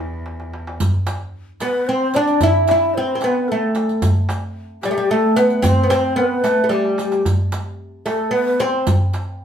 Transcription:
Already playing: cello E2, oud E4
0.26 darbuka tek
0.40 darbuka ka
0.53 darbuka tek
0.67 darbuka ka
0.80 riq, darbuka dum
1.07 riq, darbuka tek
1.60 oud B3, shakuhachi B4, riq, darbuka tek
1.87 oud C4, shakuhachi C5
2.14 oud D4, shakuhachi D5, riq, darbuka tek
2.27 riq, darbuka ka
2.41 oud E4, shakuhachi E5, riq, darbuka dum
2.67 oud E4, shakuhachi E5, riq, darbuka tek
2.94 oud C4, shakuhachi C5
3.15 oud C4
3.20 oud B3, shakuhachi C5, riq, darbuka tek
3.25 shakuhachi B4
3.48 oud A3, shakuhachi A4
3.75 riq, darbuka tek
3.89 riq, darbuka ka
4.02 riq, darbuka dum
4.29 riq, darbuka tek
4.83 oud G3, shakuhachi G4, riq, darbuka tek
4.91 oud A3
4.98 oud G3
5.10 oud A3, shakuhachi A4
5.36 oud B3, shakuhachi B4, riq, darbuka tek
5.50 riq, darbuka ka
5.62 oud C4, shakuhachi C5, riq, darbuka dum
5.83 oud B3
5.90 oud C4, riq, darbuka tek
6.16 oud B3, shakuhachi B4
6.44 oud A3, riq, darbuka tek
6.64 oud A3
6.69 oud G3, shakuhachi G4, riq, darbuka tek
6.85 darbuka ka
6.98 riq, darbuka tek
7.12 riq, darbuka ka
7.25 riq, darbuka dum
7.52 riq, darbuka tek
8.06 oud A3, shakuhachi A4, riq, darbuka tek
8.31 oud B3, shakuhachi B4
8.60 oud C4, shakuhachi C5, riq, darbuka tek
8.73 darbuka ka
8.87 riq, darbuka dum
9.13 riq, darbuka tek

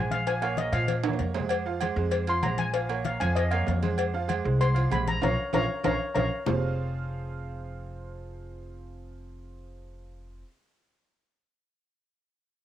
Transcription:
Already playing: upright bass A#1, upright piano G#3 G#4 C5, steel pan G#5
0.11 steel pan F5, cowbell, high conga
0.26 upright piano F3 F4 F5, steel pan G#5, cowbell, low agogo
0.41 upright piano A#3 A#4 C#5, steel pan F5, high conga, low agogo
0.57 steel pan D#5, cowbell, high conga
0.72 upright bass A#2, upright piano F3 F4 F5, steel pan F5, cowbell, high conga, low agogo
0.88 cowbell, high conga, low agogo
1.04 upright piano A#3 A#4 C#5, high timbale, low agogo
1.09 high conga
1.14 low timbale
1.19 upright bass F2, cowbell, low conga
1.34 upright piano G#3 G#4 C5, low timbale, low agogo
1.40 low conga
1.49 cowbell, high conga, low agogo
1.66 upright piano F3 F4 F5, high conga
1.81 upright piano G#3 G#4 C5, cowbell, high conga, low agogo
1.96 upright bass F2, upright piano G#3 G#4 C5
2.11 cowbell, high conga, low agogo
2.27 upright piano F3 F4 F5, steel pan C6, high conga, low agogo
2.43 upright bass A#1, upright piano G#3 G#4 C5, steel pan A#5, cowbell, high conga, low timbale, low agogo
2.58 steel pan G#5, cowbell, high conga
2.73 upright piano F3 F4 F5, cowbell, high conga, low agogo
2.89 upright piano A#3 A#4 C#5, high conga, low agogo
3.04 steel pan F5, cowbell, high conga
3.20 upright bass F2, upright piano F3 F4 F5, steel pan G#5, cowbell, high conga, low agogo
3.35 steel pan D#5, cowbell, high conga, low agogo
3.51 upright piano A#3 A#4 C#5, steel pan F5, high conga, low agogo
3.67 upright bass F2, cowbell, high conga, low timbale
3.82 upright piano G#3 G#4 C5, high conga, low agogo
3.98 cowbell, high conga, low agogo
4.13 upright piano F3 F4 F5, high conga
4.28 upright piano G#3 G#4 C5, cowbell, high conga, low agogo
4.44 upright bass C2, upright piano G#3 G#4 C5
4.61 steel pan C6, cowbell, high conga, low agogo
4.74 upright piano F3 F4 F5, high conga, low agogo
4.90 upright bass A#1, upright piano G#3 G#4 C5, steel pan B5, cowbell, high conga, low timbale, low agogo
5.07 steel pan A#5, cowbell, high conga
5.21 upright bass A#1, upright piano C#4 F4 A#4, steel pan C#5 F5 A#5, cowbell, high conga, high timbale
5.53 upright bass A#1, upright piano C#4 F4 A#4, steel pan C#5 F5 A#5, cowbell, high conga, high timbale
5.84 upright bass A#1, upright piano C#4 F4 A#4, steel pan C#5 F5 A#5, cowbell, high conga, high timbale
6.15 upright bass A#1, upright piano C#4 F4 A#4, steel pan C#5 F5 A#5, cowbell, high conga, high timbale
6.46 upright bass F1, upright piano F3 C4 F4 G#4 C5 F5, low bongo, low conga, low timbale

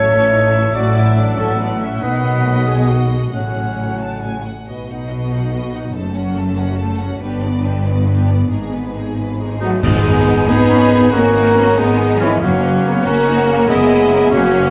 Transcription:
Already playing: viola section A3, trombone section A3, french horn section C#4 A4, violin section C#5 C#6, clarinet C#5, oboe E5, flute section A5
0.10 double bass section A1, cello section A2, trombone section E3, viola section C#4, violin section E5
0.32 viola section D#4, violin section C#5
0.53 viola section E4, violin section E5
0.73 double bass section A1, cello section A2, trombone section F#3, french horn section A3 A4, viola section F#4, clarinet D5, violin section D5 D6, flute section F#5
0.95 viola section E4, violin section E5
1.16 viola section D4, violin section D5
1.38 double bass section A1, cello section A2, viola section C#4, clarinet A4, violin section E5 A5
1.58 viola section B3, violin section D5
1.81 viola section C#4, violin section E5
2.01 double bass section B1, timpani B2, cello section B2, trombone section D#3 F#3, french horn section B3 F#4, viola section D#4, clarinet B4, oboe D#5, violin section D#5 B5
2.25 viola section B3
2.46 viola section A3
2.66 viola section G#3, clarinet G#4, violin section G#5
2.88 clarinet F#4, violin section F#5
3.32 double bass section A1, cello section A2, trombone section C#3 F#3, viola section F#3, french horn section A3 F#4, clarinet C#4, violin section C#5 F#5, flute section F#5, oboe F#5
4.00 violin section A5
4.24 violin section G#5
4.46 violin section F#5
4.66 double bass section B1, cello section B2, french horn section F#3 D#4, viola section F#4, violin section B4 D#5
4.88 viola section D#4, violin section D#5 F#5
5.09 viola section F#4, violin section B4 D#5
5.32 viola section D#4, violin section D#5 F#5
5.52 viola section F#4, violin section B4 D#5
5.73 viola section D#4, violin section D#5 F#5
5.93 double bass section F#1, cello section F#2, french horn section A3 C#4, viola section A3, violin section A4 A5
6.13 viola section C#4, violin section F#4 F#5
6.34 viola section A3, violin section A4 A5
6.56 viola section C#4, violin section F#4 F#5
6.78 viola section A3, violin section A4 A5
6.98 viola section C#4, violin section F#4 F#5
7.20 double bass section G1, cello section G2, french horn section B3 D4, viola section D4, violin section G4 B4
7.41 viola section B3, violin section B4 D5
7.63 viola section D4, violin section G4 B4
7.84 viola section B3, violin section B4 D5
8.06 viola section D4, violin section G4 B4
8.27 viola section B3, violin section B4 D5
8.50 double bass section G#1, cello section G#2, viola section G#3, french horn section D#4, violin section D#4 G#4
8.73 viola section B3, violin section G#4 B4
8.96 viola section G#3, violin section D#4 G#4
9.18 viola section B3, violin section G#4 B4
9.39 viola section G#3, violin section D#4 G#4
9.59 cello section F#3, clarinet A3, violin section A3 D#4 G#4 B4, viola section B3, oboe D#4, french horn section F#4, flute section F#5
9.81 double bass section G#1, timpani G#2, cello section G#3, viola section B3, clarinet B3, violin section B3 D#4, oboe D#4, french horn section G#4, flute section G#5, concert bass drum, crash
10.24 trombone section D#3 B3
10.47 double bass section G#1, cello section B3, clarinet D#4, violin section D#4 G#4, viola section D#4, oboe G#4, french horn section B4, flute section B5
10.69 viola section C#4
10.89 trombone section D#3 B3, viola section B3
11.11 double bass section G#1, cello section A#3, viola section C#4, clarinet C#4, violin section C#4 F#4, oboe F#4, french horn section A#4, flute section A#5
11.34 viola section D#4
11.55 trombone section D#3 B3, viola section C#4
11.76 double bass section G#1, cello section G#3, clarinet B3, violin section B3 D#4, viola section B3, oboe D#4, french horn section G#4, flute section G#5
12.20 trombone section D#3 B3, cello section E3, violin section G#3 C#4, clarinet G#3, oboe C#4, french horn section E4, flute section E5
12.39 double bass section F#1, cello section F#3, violin section A#3 C#4, clarinet A#3, viola section A#3, oboe C#4, french horn section F#4, flute section F#5
12.63 viola section C#4
12.84 trombone section C#3 A#3, viola section B3
13.04 double bass section F#1, cello section A#3, violin section C#4 F#4, viola section C#4, clarinet C#4, oboe F#4, french horn section A#4, flute section A#5
13.26 viola section D#4
13.47 trombone section C#3 A#3, viola section C#4
13.67 double bass section F#1, cello section G#3, violin section B3 E4, clarinet B3, oboe E4, french horn section G#4, viola section D#5, flute section G#5
14.10 trombone section C#3 A#3
14.31 double bass section F#1, cello section F#3, clarinet A#3, violin section A#3 C#4, oboe C#4, viola section C#4, french horn section F#4, flute section F#5

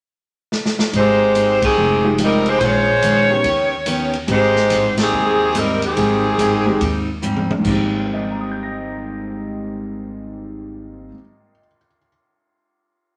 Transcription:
0.52 snare
0.66 snare
0.79 snare
0.93 upright bass G#1, steel-string acoustic guitar G#2 G3 C4 D#4, saxophone section G#3 D#4 G4 C5, kick, ride
1.34 steel-string acoustic guitar G#2 G3 C4 D#4, hi-hat pedal, ride
1.62 saxophone section D#3 C4 G4 G#4, kick, ride
1.76 upright bass F1, steel-string acoustic guitar F3 G#3 D#4 G4
2.04 grand piano F3 G#3 D#4 G4
2.18 steel-string acoustic guitar F3 G#3 D#4 G4, hi-hat pedal, ride
2.22 saxophone section G3 C4 D#4 A#4
2.46 saxophone section G#3 C5, ride
2.50 saxophone section D#4 G4
2.59 upright bass A#1, steel-string acoustic guitar A#2 D#3 G#3 C#4, saxophone section C5, kick, ride
2.64 saxophone section G#3 F4 C5 C#5
3.02 steel-string acoustic guitar A#2 D#3 G#3 C#4, hi-hat pedal, ride
3.29 grand piano D#3 B3 C#4 G4
3.44 upright bass D#2, steel-string acoustic guitar D#3 B3 C#4 G4, kick, ride
3.86 steel-string acoustic guitar D#3 B3 C#4 G4, hi-hat pedal, ride
4.13 ride
4.27 upright bass G#1, steel-string acoustic guitar G#2 G3 C4 D#4, grand piano D#3 G#3 C4 G4, saxophone section G#3, kick, ride
4.31 saxophone section D#4 G4 C5
4.56 snare
4.70 upright bass A1, steel-string acoustic guitar G#2 G3 C4 D#4, snare, hi-hat pedal, ride
4.97 saxophone section D#3 C4 G4 G#4, snare, ride
5.11 upright bass D#2, steel-string acoustic guitar G#2 G3 C4 D#4
5.53 steel-string acoustic guitar G#2 G3 C4 D#4, hi-hat pedal, ride
5.58 saxophone section G3 C4 D#4 A#4
5.82 saxophone section D#3 C4 G4 G#4, ride
5.96 upright bass G#1, steel-string acoustic guitar G#2 G3 C4 D#4, kick, ride
6.38 upright bass G1, steel-string acoustic guitar G#2 G3 C4 D#4, hi-hat pedal, ride
6.66 grand piano D#3 G#3 C4 G4
6.79 upright bass D#2, steel-string acoustic guitar G#2 G3 C4 D#4, kick, ride
7.22 steel-string acoustic guitar G#2 G3 C4 D#4, hi-hat pedal
7.36 high tom
7.51 high tom
7.58 grand piano G#2 D#3
7.64 upright bass G#1, steel-string acoustic guitar G#2 G3, grand piano A#3 C4, kick, crash
7.68 steel-string acoustic guitar C4 D#4, grand piano G4
8.06 grand piano A#4
8.14 grand piano D#5
8.22 grand piano G5
8.31 grand piano A#5
8.41 grand piano D#6
8.51 grand piano G6
8.63 grand piano A#6

